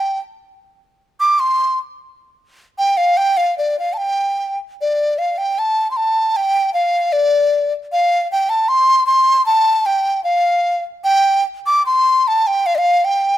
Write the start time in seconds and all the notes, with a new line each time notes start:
Already playing: G5
1.20 D6
1.40 C6
2.78 G5
2.97 F5
3.17 G5
3.37 F5
3.58 D5
3.79 F5
3.93 A5
3.98 G5
4.81 D5
5.18 F5
5.38 G5
5.59 A5
5.91 C6
5.97 A5
6.36 G5
6.74 F5
7.12 D5
7.92 F5
8.32 G5
8.49 A5
8.69 C6
9.07 C6
9.46 A5
9.86 G5
10.24 F5
11.04 G5
11.66 D6
11.86 C6
12.28 A5
12.47 G5
12.66 F5
12.75 D5 F5
13.04 G5